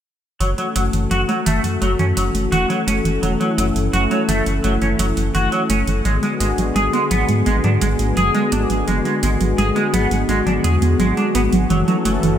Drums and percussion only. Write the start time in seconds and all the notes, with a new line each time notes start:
0.41 closed hi-hat
0.58 closed hi-hat
0.76 closed hi-hat
0.93 closed hi-hat
1.11 closed hi-hat
1.29 closed hi-hat
1.46 closed hi-hat
1.64 closed hi-hat
1.82 closed hi-hat
1.99 closed hi-hat
2.17 closed hi-hat
2.35 closed hi-hat
2.52 closed hi-hat
2.70 closed hi-hat
2.88 closed hi-hat
3.05 closed hi-hat
3.23 closed hi-hat
3.41 closed hi-hat
3.58 closed hi-hat
3.76 closed hi-hat
3.93 closed hi-hat
4.11 closed hi-hat
4.29 closed hi-hat
4.46 closed hi-hat
4.64 closed hi-hat
4.82 closed hi-hat
4.99 closed hi-hat
5.17 closed hi-hat
5.35 closed hi-hat
5.52 closed hi-hat
5.70 closed hi-hat
5.87 closed hi-hat
6.05 closed hi-hat
6.23 closed hi-hat
6.40 closed hi-hat
6.58 closed hi-hat
6.76 closed hi-hat
6.93 closed hi-hat
7.11 closed hi-hat
7.29 closed hi-hat
7.46 closed hi-hat
7.64 closed hi-hat
7.81 closed hi-hat
7.99 closed hi-hat
8.17 closed hi-hat
8.35 closed hi-hat
8.52 closed hi-hat
8.70 closed hi-hat
8.88 closed hi-hat
9.05 closed hi-hat
9.23 closed hi-hat
9.41 closed hi-hat
9.58 closed hi-hat
9.76 closed hi-hat
9.94 closed hi-hat
10.11 closed hi-hat
10.29 closed hi-hat
10.47 closed hi-hat
10.64 closed hi-hat
10.82 closed hi-hat
11.00 closed hi-hat
11.17 closed hi-hat
11.35 closed hi-hat
11.53 closed hi-hat
11.70 closed hi-hat
11.88 closed hi-hat
12.05 closed hi-hat
12.23 closed hi-hat